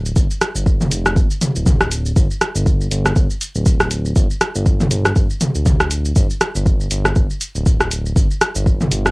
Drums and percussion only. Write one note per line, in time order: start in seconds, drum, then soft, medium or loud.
0.06 shaker medium
0.16 kick loud
0.16 shaker loud
0.31 shaker medium
0.41 cross-stick medium
0.41 open hi-hat medium
0.41 shaker medium
0.56 shaker loud
0.66 kick loud
0.66 shaker medium
0.81 mid tom medium
0.81 shaker medium
0.91 open hi-hat medium
0.91 shaker loud
1.06 cross-stick medium
1.06 shaker medium
1.16 kick loud
1.16 shaker medium
1.31 shaker medium
1.41 open hi-hat medium
1.41 mid tom medium
1.41 shaker loud
1.56 shaker medium
1.66 kick loud
1.66 mid tom medium
1.66 shaker medium
1.81 cross-stick medium
1.81 shaker medium
1.91 open hi-hat medium
1.91 shaker loud
2.06 shaker medium
2.16 kick loud
2.16 shaker loud
2.31 shaker medium
2.41 cross-stick medium
2.41 open hi-hat medium
2.41 shaker medium
2.56 shaker medium
2.66 kick loud
2.66 shaker medium
2.81 shaker medium
2.91 open hi-hat medium
2.91 shaker medium
3.06 cross-stick medium
3.06 shaker medium
3.16 kick loud
3.16 shaker medium
3.30 shaker medium
3.41 open hi-hat medium
3.41 shaker loud
3.55 shaker medium
3.66 kick loud
3.66 shaker medium
3.80 cross-stick medium
3.80 shaker medium
3.91 open hi-hat medium
3.91 shaker medium
4.05 shaker medium
4.16 kick loud
4.16 shaker medium
4.30 shaker medium
4.41 cross-stick medium
4.41 open hi-hat medium
4.41 shaker medium
4.55 shaker medium
4.66 kick loud
4.66 shaker medium
4.80 mid tom medium
4.80 shaker medium
4.91 open hi-hat medium
4.91 shaker medium
5.05 cross-stick medium
5.05 shaker medium
5.16 kick loud
5.16 shaker medium
5.30 shaker medium
5.41 open hi-hat medium
5.41 mid tom medium
5.41 shaker medium
5.55 shaker medium
5.66 kick loud
5.66 mid tom medium
5.66 shaker medium
5.80 cross-stick medium
5.80 shaker medium
5.91 open hi-hat medium
5.91 shaker medium
6.05 shaker medium
6.16 kick loud
6.16 shaker medium
6.30 shaker medium
6.41 cross-stick medium
6.41 open hi-hat loud
6.41 shaker medium
6.55 shaker medium
6.66 kick loud
6.66 shaker medium
6.80 shaker medium
6.91 open hi-hat medium
6.91 shaker medium
7.05 cross-stick medium
7.05 shaker medium
7.16 kick loud
7.16 shaker medium
7.30 shaker medium
7.41 open hi-hat medium
7.41 shaker medium
7.55 shaker medium
7.66 kick loud
7.66 shaker medium
7.81 cross-stick medium
7.81 shaker medium
7.91 open hi-hat medium
7.91 shaker medium
8.06 shaker medium
8.16 kick loud
8.16 shaker medium
8.31 shaker medium
8.41 cross-stick medium
8.41 open hi-hat loud
8.41 shaker medium
8.56 shaker medium
8.66 kick loud
8.66 shaker medium
8.81 mid tom medium
8.81 shaker medium
8.92 open hi-hat medium
8.92 shaker medium
9.06 cross-stick medium
9.06 shaker medium